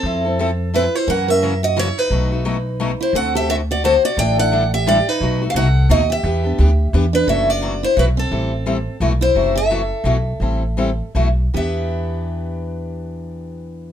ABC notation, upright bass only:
X:1
M:3/4
L:1/8
Q:"Swing" 1/4=174
K:Em
V:1 name="Upright bass" clef=bass
=F,,6 | F,,6 | B,,,6 | D,,6 |
A,,,6 | B,,,2 C,,2 ^D,,2 | E,,2 D,,2 E,,2 | F,,,4 B,,,2 |
A,,,4 B,,,2 | F,,,4 B,,,2 | A,,,4 B,,,2 | E,,6- |
E,,6 |]